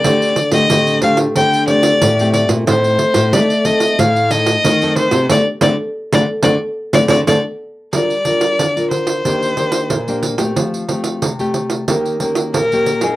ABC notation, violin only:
X:1
M:4/4
L:1/16
Q:1/4=91
K:Dphr
V:1 name="Violin"
d3 e3 f2 g2 d4 d2 | c4 d2 e2 f2 e4 c2 | d z d z2 d z d z2 d d d z3 | d6 c8 z2 |
z12 B4 |]